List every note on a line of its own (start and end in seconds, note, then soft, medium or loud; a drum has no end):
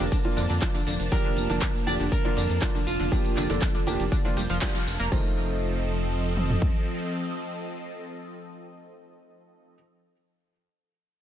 0.00 5.08 F3 medium
0.00 5.08 A#3 medium
0.00 5.08 D4 medium
0.00 0.58 A#4 medium
0.00 5.08 A5 medium
0.00 tambourine soft
0.12 0.16 D3 medium
0.12 0.16 D4 medium
0.12 kick loud
0.12 closed hi-hat medium
0.12 tambourine soft
0.25 0.39 F3 loud
0.25 0.39 A#3 loud
0.25 0.39 D4 medium
0.25 0.39 F4 loud
0.25 open hi-hat medium
0.37 0.47 F2 medium
0.37 0.41 D3 medium
0.37 0.41 D4 medium
0.37 open hi-hat loud
0.37 tambourine medium
0.50 0.59 F2 medium
0.50 0.54 D3 medium
0.50 0.54 D4 medium
0.50 closed hi-hat medium
0.50 tambourine soft
0.62 0.77 F3 medium
0.62 0.77 A#3 medium
0.62 0.77 D4 medium
0.62 0.77 F4 medium
0.62 kick loud
0.62 clap loud
0.62 closed hi-hat medium
0.62 tambourine soft
0.75 0.79 D3 medium
0.75 0.79 D4 medium
0.75 closed hi-hat soft
0.75 tambourine soft
0.87 0.97 F1 medium
0.87 0.91 D3 medium
0.87 0.91 D4 medium
0.87 open hi-hat loud
0.87 tambourine medium
1.00 1.09 F1 medium
1.00 closed hi-hat medium
1.00 tambourine soft
1.12 1.16 D3 medium
1.12 1.47 F3 medium
1.12 1.47 A#3 medium
1.12 1.16 D4 medium
1.12 1.47 D4 medium
1.12 1.47 G4 medium
1.12 1.87 A#4 loud
1.12 kick loud
1.12 closed hi-hat medium
1.12 tambourine soft
1.25 1.29 D3 medium
1.25 1.29 D4 medium
1.37 1.47 F1 medium
1.37 open hi-hat loud
1.37 tambourine medium
1.50 1.59 F1 medium
1.50 1.54 D3 medium
1.50 1.84 F3 medium
1.50 1.84 A#3 medium
1.50 1.54 D4 medium
1.50 1.84 D4 medium
1.50 1.84 A5 medium
1.50 closed hi-hat medium
1.50 tambourine soft
1.62 1.66 D3 medium
1.62 1.66 D4 medium
1.62 kick loud
1.62 clap loud
1.62 closed hi-hat medium
1.62 tambourine soft
1.75 tambourine soft
1.87 1.97 F1 loud
1.87 1.91 D3 medium
1.87 2.02 F3 loud
1.87 2.02 A#3 medium
1.87 1.91 D4 medium
1.87 2.02 D4 medium
1.87 2.02 G4 loud
1.87 1.94 D5 loud
1.87 open hi-hat loud
1.87 tambourine medium
2.00 2.09 F1 medium
2.00 2.04 D3 medium
2.00 2.04 D4 medium
2.00 closed hi-hat medium
2.00 tambourine soft
2.12 2.89 A#4 loud
2.12 kick loud
2.12 closed hi-hat medium
2.12 tambourine soft
2.25 2.29 D3 medium
2.25 2.39 F3 loud
2.25 2.39 A#3 medium
2.25 2.39 D4 medium
2.25 2.29 D4 medium
2.25 2.39 F4 loud
2.25 closed hi-hat soft
2.37 2.47 F2 loud
2.37 2.41 D3 medium
2.37 2.41 D4 medium
2.37 open hi-hat loud
2.37 tambourine medium
2.50 2.59 F2 medium
2.50 closed hi-hat medium
2.50 tambourine soft
2.62 2.66 D3 medium
2.62 2.77 F3 medium
2.62 2.77 A#3 medium
2.62 2.66 D4 medium
2.62 2.77 D4 medium
2.62 2.77 F4 loud
2.62 kick loud
2.62 clap loud
2.62 closed hi-hat medium
2.62 tambourine medium
2.75 2.79 D3 medium
2.75 2.79 D4 medium
2.75 tambourine soft
2.87 2.97 F1 medium
2.87 4.58 F4 medium
2.87 open hi-hat loud
2.87 tambourine medium
3.00 3.09 F1 medium
3.00 3.04 D3 medium
3.00 3.04 D4 medium
3.00 closed hi-hat medium
3.00 tambourine soft
3.12 3.16 D3 medium
3.12 3.47 F3 medium
3.12 3.47 A#3 medium
3.12 3.16 D4 medium
3.12 3.47 D4 medium
3.12 3.47 G4 loud
3.12 kick loud
3.12 closed hi-hat medium
3.12 tambourine soft
3.25 closed hi-hat soft
3.25 tambourine soft
3.37 3.47 F1 loud
3.37 3.41 D3 medium
3.37 3.41 D4 medium
3.37 clap soft
3.37 open hi-hat loud
3.37 tambourine medium
3.50 3.59 F1 medium
3.50 3.54 D3 medium
3.50 3.84 F3 medium
3.50 3.84 A#3 medium
3.50 3.54 D4 medium
3.50 3.84 D4 medium
3.50 3.84 A4 medium
3.50 closed hi-hat medium
3.50 tambourine soft
3.62 kick loud
3.62 clap loud
3.62 closed hi-hat medium
3.62 tambourine soft
3.75 3.79 D3 medium
3.75 3.79 D4 medium
3.75 closed hi-hat soft
3.75 tambourine soft
3.87 3.97 F1 medium
3.87 3.91 D3 medium
3.87 4.02 F3 loud
3.87 4.02 A#3 loud
3.87 4.02 D4 medium
3.87 3.91 D4 soft
3.87 4.02 G4 loud
3.87 open hi-hat loud
3.87 tambourine medium
4.00 4.09 F1 medium
4.00 closed hi-hat medium
4.00 tambourine soft
4.12 4.16 D3 medium
4.12 4.16 D4 medium
4.12 kick loud
4.12 closed hi-hat medium
4.12 tambourine soft
4.25 4.29 D3 medium
4.25 4.39 F3 loud
4.25 4.39 A#3 medium
4.25 4.29 D4 medium
4.25 4.39 D4 medium
4.25 4.39 F4 loud
4.25 open hi-hat medium
4.25 tambourine soft
4.37 4.47 F1 medium
4.37 4.44 G3 medium
4.37 4.44 G4 medium
4.37 open hi-hat loud
4.37 tambourine medium
4.50 4.59 F1 medium
4.50 4.56 F3 loud
4.50 4.56 F4 medium
4.50 closed hi-hat medium
4.50 tambourine soft
4.62 4.77 F3 medium
4.62 4.66 G3 medium
4.62 4.77 A#3 medium
4.62 4.77 D4 medium
4.62 4.77 F4 medium
4.62 4.66 G4 medium
4.62 kick loud
4.62 clap loud
4.62 closed hi-hat medium
4.62 tambourine medium
4.75 4.77 F3 medium
4.75 4.77 F4 medium
4.75 closed hi-hat soft
4.75 tambourine soft
4.87 4.97 F1 loud
4.87 open hi-hat loud
4.87 tambourine medium
5.00 5.09 F1 medium
5.00 5.06 A#3 loud
5.00 5.06 A#4 medium
5.00 closed hi-hat medium
5.00 tambourine soft
5.12 6.58 F1 loud
5.12 5.35 D#3 medium
5.12 9.74 F3 medium
5.12 9.74 A3 medium
5.12 9.74 C4 medium
5.12 9.74 D#4 medium
5.12 9.74 F4 medium
5.12 9.74 A4 medium
5.12 9.74 C5 loud
5.12 9.74 D#5 loud
5.12 kick loud
5.12 crash medium
6.37 mid tom medium
6.50 floor tom medium
6.62 kick medium